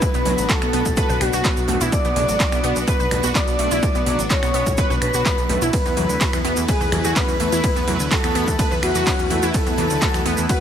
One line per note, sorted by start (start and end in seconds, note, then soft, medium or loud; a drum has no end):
0.00 5.69 B3 medium
0.00 5.69 D4 medium
0.00 5.69 F#4 medium
0.00 0.51 B4 loud
0.00 0.51 B5 loud
0.00 kick loud
0.00 closed hi-hat medium
0.00 shaker medium
0.14 0.23 B1 medium
0.14 0.21 B3 medium
0.14 closed hi-hat soft
0.14 shaker soft
0.25 0.35 B1 loud
0.25 0.33 F#3 medium
0.25 open hi-hat loud
0.25 high conga medium
0.38 0.47 A1 medium
0.38 closed hi-hat medium
0.38 shaker medium
0.49 0.57 F#4 medium
0.49 1.22 A4 loud
0.49 1.22 A5 loud
0.49 kick loud
0.49 clap loud
0.49 closed hi-hat medium
0.49 shaker medium
0.62 0.70 B1 medium
0.62 0.66 B3 medium
0.62 finger snap medium
0.62 closed hi-hat soft
0.62 shaker soft
0.73 0.83 B1 loud
0.73 0.78 B3 loud
0.73 open hi-hat loud
0.85 kick medium
0.85 closed hi-hat medium
0.85 low conga loud
0.85 shaker medium
0.97 1.05 B4 loud
0.97 kick loud
0.97 closed hi-hat medium
0.97 shaker medium
1.10 1.18 B1 medium
1.10 1.17 B4 medium
1.10 high conga medium
1.10 shaker soft
1.21 1.30 B1 loud
1.21 1.83 F#4 loud
1.21 1.83 F#5 medium
1.21 finger snap medium
1.21 open hi-hat loud
1.33 1.42 B1 medium
1.33 1.38 F#4 loud
1.33 closed hi-hat medium
1.33 high conga medium
1.33 shaker medium
1.44 1.49 B3 medium
1.44 kick loud
1.44 clap loud
1.44 closed hi-hat medium
1.44 shaker medium
1.57 1.66 B1 medium
1.57 closed hi-hat soft
1.57 shaker soft
1.68 1.78 B1 loud
1.68 1.80 A3 medium
1.68 open hi-hat loud
1.68 low conga medium
1.81 1.89 B1 medium
1.81 1.91 E4 loud
1.81 closed hi-hat medium
1.81 shaker medium
1.92 2.78 D5 loud
1.92 2.78 D6 loud
1.92 kick loud
1.92 closed hi-hat medium
1.92 shaker medium
2.05 2.13 B1 medium
2.05 2.12 B3 medium
2.05 closed hi-hat soft
2.05 shaker soft
2.16 2.25 B1 loud
2.16 2.24 F#3 medium
2.16 open hi-hat loud
2.16 high conga medium
2.28 2.37 A1 medium
2.28 closed hi-hat medium
2.28 shaker medium
2.40 2.48 F#4 medium
2.40 kick loud
2.40 clap loud
2.40 closed hi-hat medium
2.40 shaker medium
2.52 2.61 B1 medium
2.52 2.57 B3 medium
2.52 finger snap medium
2.52 closed hi-hat soft
2.52 shaker soft
2.64 2.73 B1 loud
2.64 2.68 B3 loud
2.64 open hi-hat loud
2.76 2.84 B1 medium
2.76 closed hi-hat medium
2.76 shaker medium
2.87 2.95 B4 loud
2.87 3.31 B4 loud
2.87 3.31 B5 medium
2.87 kick loud
2.87 closed hi-hat medium
2.87 shaker medium
3.00 3.08 B1 medium
3.00 3.07 B4 medium
3.00 high conga medium
3.00 shaker soft
3.11 3.20 B1 loud
3.11 finger snap medium
3.11 open hi-hat loud
3.11 low conga loud
3.23 3.32 B1 loud
3.23 3.28 F#4 loud
3.23 closed hi-hat medium
3.23 shaker medium
3.35 3.40 B3 medium
3.35 4.21 D5 loud
3.35 4.21 D6 loud
3.35 kick loud
3.35 clap loud
3.35 closed hi-hat medium
3.35 shaker medium
3.47 3.56 B1 medium
3.47 closed hi-hat soft
3.47 shaker soft
3.59 3.68 B1 loud
3.59 3.71 A3 medium
3.59 open hi-hat loud
3.71 3.80 B1 medium
3.71 3.82 E4 loud
3.71 closed hi-hat medium
3.71 shaker medium
3.83 kick loud
3.83 closed hi-hat medium
3.83 shaker medium
3.95 4.03 B1 medium
3.95 4.02 B3 medium
3.95 closed hi-hat soft
3.95 shaker soft
4.06 4.16 B1 loud
4.06 4.14 F#3 medium
4.06 open hi-hat loud
4.06 high conga medium
4.19 4.27 A1 medium
4.19 closed hi-hat medium
4.19 shaker medium
4.30 4.38 F#4 medium
4.30 4.93 C#5 loud
4.30 4.93 C#6 loud
4.30 kick loud
4.30 clap loud
4.30 closed hi-hat medium
4.30 shaker medium
4.43 4.51 B1 medium
4.43 4.47 B3 medium
4.43 finger snap medium
4.43 closed hi-hat soft
4.43 shaker soft
4.54 4.63 B1 loud
4.54 4.59 B3 loud
4.54 open hi-hat loud
4.66 4.75 B1 loud
4.66 kick medium
4.66 closed hi-hat medium
4.66 low conga loud
4.66 shaker medium
4.77 4.86 B4 loud
4.77 kick loud
4.77 closed hi-hat medium
4.77 shaker medium
4.90 4.99 B1 medium
4.90 4.97 B4 medium
4.90 high conga medium
4.90 shaker soft
5.02 5.11 B1 loud
5.02 5.64 B4 loud
5.02 5.64 B5 loud
5.02 finger snap medium
5.02 open hi-hat loud
5.14 5.23 B1 medium
5.14 5.19 F#4 loud
5.14 closed hi-hat medium
5.14 high conga medium
5.14 shaker medium
5.25 5.30 B3 medium
5.25 kick loud
5.25 clap loud
5.25 closed hi-hat medium
5.25 shaker medium
5.38 5.46 B1 medium
5.38 closed hi-hat soft
5.38 shaker soft
5.49 5.58 B1 loud
5.49 5.61 A3 medium
5.49 open hi-hat loud
5.49 low conga loud
5.62 5.70 B1 medium
5.62 5.72 E4 loud
5.62 closed hi-hat medium
5.62 shaker medium
5.73 10.60 E3 medium
5.73 10.60 A3 medium
5.73 10.60 E4 medium
5.73 6.59 B4 loud
5.73 10.60 B4 medium
5.73 6.59 B5 loud
5.73 kick loud
5.73 closed hi-hat medium
5.73 ride medium
5.73 shaker medium
5.85 5.94 E2 medium
5.85 5.93 B3 medium
5.85 closed hi-hat soft
5.85 shaker soft
5.96 6.06 E2 loud
5.96 6.05 F#3 medium
5.96 open hi-hat loud
5.96 high conga medium
6.09 6.18 D2 medium
6.09 closed hi-hat medium
6.09 shaker medium
6.21 6.29 F#4 medium
6.21 kick loud
6.21 clap loud
6.21 closed hi-hat medium
6.21 ride medium
6.21 shaker medium
6.33 6.42 E2 medium
6.33 6.38 B3 medium
6.33 finger snap medium
6.33 closed hi-hat soft
6.33 shaker soft
6.44 6.54 E2 loud
6.44 6.49 B3 loud
6.44 open hi-hat loud
6.57 6.65 E2 loud
6.57 closed hi-hat medium
6.57 shaker medium
6.68 7.12 G#4 loud
6.68 6.76 B4 loud
6.68 7.11 G#5 medium
6.68 kick loud
6.68 closed hi-hat medium
6.68 ride medium
6.68 shaker medium
6.81 6.89 E2 medium
6.81 6.88 B4 medium
6.81 high conga medium
6.81 shaker soft
6.92 7.01 E2 loud
6.92 finger snap medium
6.92 open hi-hat loud
6.92 low conga loud
7.05 7.13 E2 medium
7.05 7.09 F#4 loud
7.05 closed hi-hat medium
7.05 shaker medium
7.16 7.21 C#4 medium
7.16 8.02 B4 loud
7.16 8.02 B5 loud
7.16 kick loud
7.16 clap loud
7.16 closed hi-hat medium
7.16 ride medium
7.16 shaker medium
7.28 7.37 E2 medium
7.28 closed hi-hat soft
7.28 shaker soft
7.40 7.49 E2 loud
7.40 7.51 A3 medium
7.40 open hi-hat loud
7.52 7.61 E2 medium
7.52 7.63 E4 loud
7.52 closed hi-hat medium
7.52 shaker medium
7.64 kick loud
7.64 closed hi-hat medium
7.64 ride medium
7.64 shaker medium
7.76 7.84 E2 medium
7.76 7.83 B3 medium
7.76 closed hi-hat soft
7.76 shaker soft
7.87 7.97 E2 loud
7.87 7.95 F#3 medium
7.87 open hi-hat loud
7.87 high conga medium
8.00 8.08 D2 medium
8.00 closed hi-hat medium
8.00 shaker medium
8.11 8.19 F#4 medium
8.11 8.74 A4 loud
8.11 8.74 A5 loud
8.11 kick loud
8.11 clap loud
8.11 closed hi-hat medium
8.11 ride medium
8.11 shaker medium
8.24 8.32 E2 medium
8.24 8.28 B3 medium
8.24 finger snap medium
8.24 closed hi-hat soft
8.24 shaker soft
8.35 8.44 E2 loud
8.35 8.40 B3 loud
8.35 open hi-hat loud
8.47 8.56 E2 loud
8.47 kick medium
8.47 closed hi-hat medium
8.47 low conga medium
8.47 shaker medium
8.59 8.67 B4 loud
8.59 kick loud
8.59 closed hi-hat medium
8.59 ride medium
8.59 shaker medium
8.71 8.80 E2 medium
8.71 8.79 B4 medium
8.71 high conga medium
8.71 shaker soft
8.83 8.92 E2 loud
8.83 9.45 F#4 loud
8.83 9.45 F#5 loud
8.83 finger snap medium
8.83 open hi-hat loud
8.95 9.04 E2 medium
8.95 9.00 F#4 loud
8.95 closed hi-hat medium
8.95 high conga medium
8.95 shaker medium
9.07 9.11 C#4 medium
9.07 kick loud
9.07 clap loud
9.07 closed hi-hat medium
9.07 ride medium
9.07 shaker medium
9.19 9.27 E2 medium
9.19 closed hi-hat soft
9.19 shaker soft
9.30 9.39 E2 loud
9.30 9.42 A3 medium
9.30 open hi-hat loud
9.30 low conga medium
9.43 9.51 E2 medium
9.43 9.53 E4 loud
9.43 closed hi-hat medium
9.43 shaker medium
9.54 10.40 A4 loud
9.54 10.40 A5 loud
9.54 kick loud
9.54 closed hi-hat medium
9.54 ride medium
9.54 shaker medium
9.66 9.75 E2 medium
9.66 9.74 B3 medium
9.66 closed hi-hat soft
9.66 shaker soft
9.78 9.87 E2 loud
9.78 9.86 F#3 medium
9.78 open hi-hat loud
9.78 high conga medium
9.90 9.99 D2 medium
9.90 closed hi-hat medium
9.90 shaker medium
10.02 10.10 F#4 medium
10.02 kick loud
10.02 clap loud
10.02 closed hi-hat medium
10.02 ride medium
10.02 shaker medium
10.14 10.23 E2 medium
10.14 10.18 B3 medium
10.14 finger snap medium
10.14 closed hi-hat soft
10.14 shaker soft
10.26 10.35 E2 loud
10.26 10.30 B3 loud
10.26 open hi-hat loud
10.37 10.46 E2 loud
10.37 closed hi-hat medium
10.37 shaker medium
10.49 10.60 F#4 loud
10.49 10.57 B4 loud
10.49 10.60 F#5 medium
10.49 kick loud
10.49 closed hi-hat medium
10.49 ride medium
10.49 shaker medium